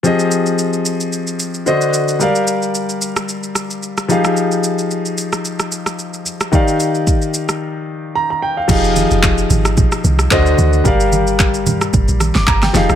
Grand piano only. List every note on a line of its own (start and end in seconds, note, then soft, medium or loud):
0.03 1.63 F3 medium
0.03 1.63 C4 medium
0.03 1.63 G4 medium
0.03 1.64 G#4 medium
0.03 1.64 D#5 medium
1.66 2.20 D3 medium
1.66 2.20 D4 medium
1.66 2.21 F#4 medium
1.66 2.21 C5 medium
1.66 2.21 D#5 medium
2.19 4.05 G3 medium
2.19 4.06 G4 medium
2.19 4.06 A#4 medium
2.19 4.07 D5 medium
2.19 4.07 F5 medium
4.08 6.21 F3 medium
4.08 6.22 D#4 medium
4.08 6.22 G4 medium
4.08 6.23 G#4 medium
4.08 6.23 F5 medium
6.52 8.64 D#3 medium
6.52 8.65 D#4 medium
6.52 8.65 G4 medium
6.52 8.66 D5 medium
6.52 8.13 F5 medium
8.15 8.29 A#5 medium
8.30 8.42 A#5 medium
8.42 8.56 G5 medium
8.57 8.70 F5 medium
8.68 10.27 F3 medium
8.68 10.28 D#4 medium
8.68 10.28 G4 medium
8.68 10.29 G#4 medium
8.68 10.29 F5 medium
10.31 10.85 D3 medium
10.31 10.85 D4 medium
10.31 10.86 F#4 medium
10.31 10.86 C5 medium
10.31 10.86 D#5 medium
10.84 12.70 G3 medium
10.84 12.70 G4 medium
10.84 12.71 A#4 medium
10.84 12.71 D5 medium
10.84 12.72 F5 medium
12.36 12.47 D6 medium
12.48 12.62 A#5 medium
12.63 12.88 G5 medium
12.73 12.95 F3 medium
12.73 12.95 D#4 medium
12.73 12.95 G4 medium
12.73 12.95 G#4 medium
12.73 12.95 F5 medium